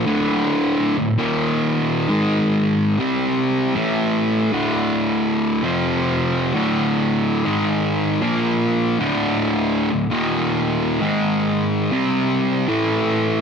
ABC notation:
X:1
M:4/4
L:1/16
Q:"Swing" 1/4=54
K:Cmix
V:1 name="Distorted electric guitar" clef=bass
[D,,A,,D,]3 [D,,A,,] [_E,,B,,_E,]3 [^G,,E,^G,]3 [C,=G,C]3 [A,,=E,A,]3 | [D,,A,,D,]4 [F,,C,F,]3 [D,,A,,D,]3 [^G,,_E,^G,]3 [B,,F,B,]3 | [D,,A,,D,]3 [D,,A,,] [_E,,B,,_E,]3 [^G,,E,^G,]3 [C,=G,C]3 [A,,=E,A,]3 |]